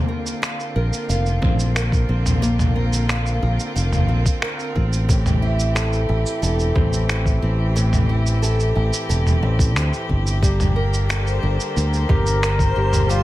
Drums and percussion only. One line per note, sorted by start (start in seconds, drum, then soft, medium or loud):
0.26 cabasa medium
0.43 finger snap medium
0.43 cabasa medium
0.60 cabasa soft
0.93 cabasa medium
1.10 cabasa medium
1.26 cabasa soft
1.42 kick medium
1.42 mid tom medium
1.59 cabasa medium
1.76 finger snap medium
1.76 cabasa soft
1.92 kick loud
1.92 cabasa soft
2.26 mid tom medium
2.26 cabasa medium
2.43 cabasa medium
2.59 mid tom medium
2.59 cabasa soft
2.93 cabasa medium
3.09 finger snap medium
3.09 cabasa medium
3.26 cabasa soft
3.60 cabasa medium
3.76 cabasa medium
3.93 mid tom medium
3.93 cabasa soft
4.26 kick loud
4.26 cabasa medium
4.42 finger snap loud
4.59 cabasa soft
4.76 kick medium
4.93 cabasa medium
5.09 kick loud
5.09 cabasa medium
5.26 mid tom medium
5.26 cabasa soft
5.60 cabasa medium
5.76 finger snap medium
5.76 cabasa medium
5.93 cabasa soft
6.26 cabasa medium
6.43 cabasa medium
6.59 cabasa soft
6.76 kick loud
6.76 mid tom medium
6.93 cabasa medium
7.09 finger snap medium
7.09 cabasa medium
7.26 kick loud
7.26 cabasa soft
7.76 cabasa medium
7.93 mid tom medium
7.93 cabasa soft
8.26 cabasa medium
8.43 cabasa medium
8.60 cabasa soft
8.93 cabasa medium
9.10 cabasa medium
9.27 mid tom medium
9.27 cabasa soft
9.59 kick loud
9.59 cabasa medium
9.76 finger snap medium
9.76 cabasa medium
9.93 cabasa soft
10.09 kick medium
10.27 cabasa medium
10.43 kick loud
10.43 cabasa medium
10.60 mid tom medium
10.60 cabasa soft
10.94 cabasa medium
11.10 finger snap loud
11.10 cabasa medium
11.27 cabasa soft
11.60 cabasa medium
11.77 cabasa medium
11.93 cabasa soft
12.09 kick medium
12.09 mid tom medium
12.27 cabasa medium
12.43 finger snap medium
12.43 cabasa medium
12.59 kick loud
12.59 cabasa soft
12.93 mid tom medium
12.93 cabasa medium
13.10 cabasa soft